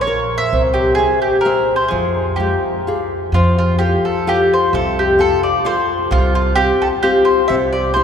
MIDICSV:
0, 0, Header, 1, 4, 480
1, 0, Start_track
1, 0, Key_signature, -4, "minor"
1, 0, Tempo, 466926
1, 545, Time_signature, 3, 2, 24, 8
1, 3427, Key_signature, -1, "major"
1, 5352, Tempo, 459418
1, 8309, End_track
2, 0, Start_track
2, 0, Title_t, "Mandolin"
2, 0, Program_c, 0, 25
2, 12, Note_on_c, 0, 73, 89
2, 376, Note_off_c, 0, 73, 0
2, 387, Note_on_c, 0, 76, 100
2, 629, Note_off_c, 0, 76, 0
2, 756, Note_on_c, 0, 67, 67
2, 970, Note_off_c, 0, 67, 0
2, 974, Note_on_c, 0, 68, 88
2, 1228, Note_off_c, 0, 68, 0
2, 1250, Note_on_c, 0, 67, 63
2, 1448, Note_on_c, 0, 70, 80
2, 1491, Note_off_c, 0, 67, 0
2, 1805, Note_off_c, 0, 70, 0
2, 1809, Note_on_c, 0, 72, 76
2, 1936, Note_on_c, 0, 68, 68
2, 1938, Note_off_c, 0, 72, 0
2, 2421, Note_off_c, 0, 68, 0
2, 2425, Note_on_c, 0, 67, 63
2, 2891, Note_off_c, 0, 67, 0
2, 3436, Note_on_c, 0, 65, 76
2, 3668, Note_off_c, 0, 65, 0
2, 3685, Note_on_c, 0, 65, 71
2, 3887, Note_off_c, 0, 65, 0
2, 3891, Note_on_c, 0, 67, 82
2, 4138, Note_off_c, 0, 67, 0
2, 4163, Note_on_c, 0, 69, 65
2, 4399, Note_off_c, 0, 69, 0
2, 4407, Note_on_c, 0, 67, 81
2, 4660, Note_off_c, 0, 67, 0
2, 4662, Note_on_c, 0, 72, 74
2, 4864, Note_off_c, 0, 72, 0
2, 4881, Note_on_c, 0, 69, 80
2, 5111, Note_off_c, 0, 69, 0
2, 5131, Note_on_c, 0, 67, 72
2, 5337, Note_off_c, 0, 67, 0
2, 5352, Note_on_c, 0, 69, 95
2, 5585, Note_off_c, 0, 69, 0
2, 5589, Note_on_c, 0, 74, 77
2, 5823, Note_off_c, 0, 74, 0
2, 5828, Note_on_c, 0, 72, 96
2, 6272, Note_off_c, 0, 72, 0
2, 6308, Note_on_c, 0, 65, 94
2, 6537, Note_off_c, 0, 65, 0
2, 6549, Note_on_c, 0, 65, 77
2, 6757, Note_off_c, 0, 65, 0
2, 6761, Note_on_c, 0, 67, 101
2, 7030, Note_off_c, 0, 67, 0
2, 7034, Note_on_c, 0, 69, 80
2, 7095, Note_off_c, 0, 69, 0
2, 7253, Note_on_c, 0, 67, 96
2, 7486, Note_on_c, 0, 72, 83
2, 7519, Note_off_c, 0, 67, 0
2, 7713, Note_off_c, 0, 72, 0
2, 7724, Note_on_c, 0, 76, 88
2, 7796, Note_off_c, 0, 76, 0
2, 7984, Note_on_c, 0, 74, 74
2, 8201, Note_off_c, 0, 74, 0
2, 8205, Note_on_c, 0, 72, 87
2, 8309, Note_off_c, 0, 72, 0
2, 8309, End_track
3, 0, Start_track
3, 0, Title_t, "Nylon-string guitar"
3, 0, Program_c, 1, 24
3, 71, Note_on_c, 1, 70, 46
3, 78, Note_on_c, 1, 73, 53
3, 450, Note_off_c, 1, 70, 0
3, 454, Note_off_c, 1, 73, 0
3, 542, Note_on_c, 1, 60, 49
3, 1004, Note_off_c, 1, 60, 0
3, 1006, Note_on_c, 1, 67, 39
3, 1013, Note_on_c, 1, 72, 42
3, 1017, Note_on_c, 1, 76, 40
3, 1391, Note_off_c, 1, 67, 0
3, 1393, Note_off_c, 1, 72, 0
3, 1397, Note_off_c, 1, 76, 0
3, 1492, Note_on_c, 1, 67, 51
3, 1498, Note_on_c, 1, 76, 56
3, 1503, Note_on_c, 1, 72, 51
3, 1875, Note_off_c, 1, 67, 0
3, 1879, Note_off_c, 1, 76, 0
3, 1882, Note_off_c, 1, 72, 0
3, 1960, Note_on_c, 1, 53, 55
3, 2432, Note_off_c, 1, 53, 0
3, 2461, Note_on_c, 1, 65, 33
3, 2465, Note_on_c, 1, 56, 37
3, 2470, Note_on_c, 1, 67, 32
3, 2848, Note_off_c, 1, 65, 0
3, 2851, Note_off_c, 1, 56, 0
3, 2852, Note_off_c, 1, 67, 0
3, 2952, Note_on_c, 1, 65, 42
3, 2962, Note_on_c, 1, 68, 53
3, 2964, Note_on_c, 1, 67, 40
3, 3338, Note_off_c, 1, 65, 0
3, 3342, Note_off_c, 1, 67, 0
3, 3345, Note_off_c, 1, 68, 0
3, 3445, Note_on_c, 1, 53, 48
3, 3902, Note_on_c, 1, 65, 41
3, 3905, Note_off_c, 1, 53, 0
3, 3907, Note_on_c, 1, 67, 33
3, 3909, Note_on_c, 1, 69, 44
3, 4292, Note_off_c, 1, 65, 0
3, 4294, Note_off_c, 1, 67, 0
3, 4296, Note_off_c, 1, 69, 0
3, 4392, Note_on_c, 1, 65, 55
3, 4397, Note_on_c, 1, 69, 55
3, 4399, Note_on_c, 1, 67, 45
3, 4775, Note_off_c, 1, 65, 0
3, 4778, Note_off_c, 1, 69, 0
3, 4779, Note_off_c, 1, 67, 0
3, 4876, Note_on_c, 1, 48, 59
3, 5331, Note_on_c, 1, 65, 42
3, 5336, Note_on_c, 1, 67, 40
3, 5337, Note_off_c, 1, 48, 0
3, 5344, Note_on_c, 1, 69, 48
3, 5724, Note_off_c, 1, 65, 0
3, 5725, Note_off_c, 1, 67, 0
3, 5732, Note_off_c, 1, 69, 0
3, 5813, Note_on_c, 1, 65, 46
3, 5821, Note_on_c, 1, 67, 43
3, 5830, Note_on_c, 1, 69, 61
3, 6202, Note_off_c, 1, 65, 0
3, 6206, Note_off_c, 1, 67, 0
3, 6212, Note_off_c, 1, 69, 0
3, 6294, Note_on_c, 1, 48, 54
3, 6760, Note_off_c, 1, 48, 0
3, 6769, Note_on_c, 1, 65, 40
3, 6774, Note_on_c, 1, 60, 41
3, 6782, Note_on_c, 1, 67, 53
3, 7156, Note_off_c, 1, 65, 0
3, 7159, Note_off_c, 1, 60, 0
3, 7161, Note_off_c, 1, 67, 0
3, 7257, Note_on_c, 1, 65, 52
3, 7260, Note_on_c, 1, 60, 56
3, 7266, Note_on_c, 1, 67, 64
3, 7646, Note_off_c, 1, 65, 0
3, 7648, Note_off_c, 1, 60, 0
3, 7650, Note_off_c, 1, 67, 0
3, 7743, Note_on_c, 1, 48, 67
3, 8215, Note_off_c, 1, 48, 0
3, 8221, Note_on_c, 1, 60, 40
3, 8223, Note_on_c, 1, 64, 37
3, 8235, Note_on_c, 1, 67, 51
3, 8309, Note_off_c, 1, 60, 0
3, 8309, Note_off_c, 1, 64, 0
3, 8309, Note_off_c, 1, 67, 0
3, 8309, End_track
4, 0, Start_track
4, 0, Title_t, "Upright bass"
4, 0, Program_c, 2, 32
4, 537, Note_on_c, 2, 36, 69
4, 1156, Note_off_c, 2, 36, 0
4, 1973, Note_on_c, 2, 41, 78
4, 2602, Note_off_c, 2, 41, 0
4, 3414, Note_on_c, 2, 41, 84
4, 4046, Note_off_c, 2, 41, 0
4, 4862, Note_on_c, 2, 36, 93
4, 5486, Note_off_c, 2, 36, 0
4, 6296, Note_on_c, 2, 36, 92
4, 6918, Note_off_c, 2, 36, 0
4, 7740, Note_on_c, 2, 36, 84
4, 8309, Note_off_c, 2, 36, 0
4, 8309, End_track
0, 0, End_of_file